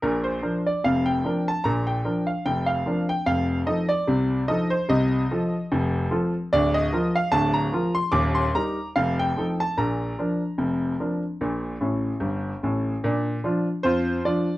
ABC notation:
X:1
M:2/4
L:1/16
Q:"Swing 16ths" 1/4=74
K:Bb
V:1 name="Grand piano"
B c2 d f g2 a | b g2 f g f2 g | f2 e d3 e c | e8 |
d e2 f a b2 c' | d' c' b2 f g2 a | b8- | b6 z2 |
z4 [Fc]2 d2 |]
V:2 name="Grand piano" clef=bass
[B,,,B,,]2 [F,DB]2 [F,,,F,,]2 [F,DB]2 | [B,,,B,,]2 [F,DB]2 [F,,,F,,]2 [F,DB]2 | [F,,,F,,]2 [F,EA]2 [C,,C,]2 [F,EA]2 | [C,,C,]2 [F,FA]2 [F,,,F,,]2 [F,FA]2 |
[D,,,D,,]2 [F,FB]2 [D,,,D,,]2 [F,FB]2 | [E,,,E,,]2 [G,EB]2 [F,,,F,,]2 [F,EA]2 | [B,,,B,,]2 [F,DB]2 [F,,,F,,]2 [F,DB]2 | [B,,,B,,]2 [A,,,A,,]2 [G,,,G,,]2 [A,,,A,,]2 |
[B,,D]2 [F,DF]2 F,,2 [F,DF]2 |]